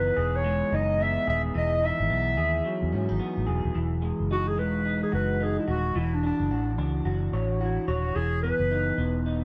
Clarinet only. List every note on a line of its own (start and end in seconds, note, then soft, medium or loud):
0.00 0.37 B4 medium
0.36 0.76 C#5 medium
0.75 1.04 D#5 medium
1.02 1.29 E5 loud
1.30 1.42 E5 loud
1.58 1.87 D#5 loud
1.85 2.94 E5 medium
4.32 4.49 F#4 loud
4.48 4.61 G#4 medium
4.59 5.02 B4 medium
5.03 5.13 G#4 medium
5.15 5.45 B4 medium
5.43 5.58 G#4 medium
5.59 5.63 E4 medium
5.70 5.99 F#4 medium
5.97 6.16 E4 medium
6.14 6.24 D4 medium
6.26 6.76 D4 medium
7.61 7.87 E4 medium
7.88 8.17 F#4 medium
8.16 8.42 G#4 loud
8.43 9.21 B4 loud